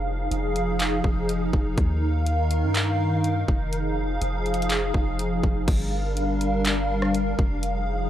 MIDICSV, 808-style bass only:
0, 0, Header, 1, 2, 480
1, 0, Start_track
1, 0, Tempo, 487805
1, 1748, Time_signature, 4, 2, 24, 8
1, 7968, End_track
2, 0, Start_track
2, 0, Title_t, "808-style bass"
2, 0, Program_c, 0, 38
2, 0, Note_on_c, 0, 29, 104
2, 280, Note_off_c, 0, 29, 0
2, 308, Note_on_c, 0, 29, 105
2, 999, Note_off_c, 0, 29, 0
2, 1026, Note_on_c, 0, 29, 104
2, 1487, Note_off_c, 0, 29, 0
2, 1509, Note_on_c, 0, 29, 104
2, 1739, Note_off_c, 0, 29, 0
2, 1747, Note_on_c, 0, 39, 101
2, 2587, Note_on_c, 0, 43, 97
2, 2602, Note_off_c, 0, 39, 0
2, 3388, Note_off_c, 0, 43, 0
2, 3428, Note_on_c, 0, 29, 105
2, 4119, Note_off_c, 0, 29, 0
2, 4148, Note_on_c, 0, 29, 102
2, 4839, Note_off_c, 0, 29, 0
2, 4864, Note_on_c, 0, 29, 103
2, 5327, Note_off_c, 0, 29, 0
2, 5348, Note_on_c, 0, 29, 107
2, 5578, Note_off_c, 0, 29, 0
2, 5587, Note_on_c, 0, 31, 105
2, 7228, Note_off_c, 0, 31, 0
2, 7269, Note_on_c, 0, 29, 108
2, 7960, Note_off_c, 0, 29, 0
2, 7968, End_track
0, 0, End_of_file